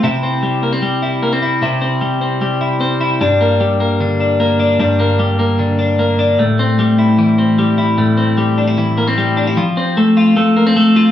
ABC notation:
X:1
M:4/4
L:1/16
Q:1/4=151
K:Aphr
V:1 name="Clean electric guitar"
[C,E]2 C2 G,2 B, C G,2 E2 B, C E2 | [C,E]2 C2 G,2 C2 G,2 E2 C2 E2 | [G,,D]2 B,2 G,2 B,2 D,2 D2 B,2 D2 | [G,,D]2 B,2 G,2 B,2 D,2 D2 B,2 D2 |
A,,2 C2 G,2 E2 E,2 C2 G,2 E2 | A,,2 C2 G,2 D E E,2 B, C G,2 D E | F,2 C2 A,2 F2 A,2 B, C A,2 F2 |]